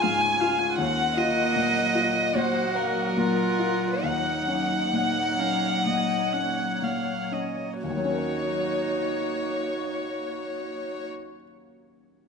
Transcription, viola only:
0.03 0.23 F5 soft
0.22 0.42 G#5 soft
0.40 0.61 F5 soft
0.59 0.77 G#5 soft
0.78 2.31 F#5 medium
2.35 3.15 F#5 soft
3.17 4.01 F#5 soft
4.03 4.82 F#5 soft
4.93 5.41 F#5 medium
5.39 5.86 F5 soft
5.86 6.35 D#5 soft
6.34 6.85 F#5 soft
6.84 7.34 F5 soft
7.33 7.84 D#5 soft
7.84 11.10 F#4 soft

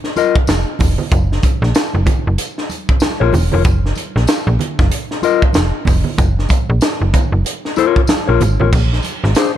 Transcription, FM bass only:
0.49 0.65 F1 medium
0.81 0.97 F1 medium
1.12 1.40 F#1 loud
1.62 1.73 A#1 loud
1.95 2.05 F#1 medium
2.27 2.38 F#1 medium
3.21 3.32 A#1 medium
3.34 3.50 E1 loud
3.54 3.64 F1 medium
3.65 3.93 F#1 loud
4.16 4.27 A#1 medium
4.47 4.58 A#1 loud
4.79 4.90 F#1 medium
5.56 5.72 F1 medium
5.87 6.04 F1 medium
6.18 6.47 F#1 loud
6.70 6.81 A#1 loud
7.01 7.13 F#1 medium
7.32 7.44 F#1 medium
8.29 8.40 A#1 medium
8.42 8.58 G#1 loud
8.61 8.72 A1 medium
8.73 9.01 A#1 loud
9.24 9.35 G#1 loud

